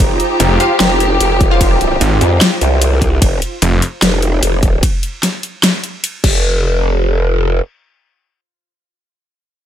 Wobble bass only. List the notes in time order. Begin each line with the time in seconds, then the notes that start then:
0.00 F1
0.80 F1
1.21 F1
2.21 F2
2.61 C2
3.22 F1
4.02 F1
4.43 F1
6.24 F1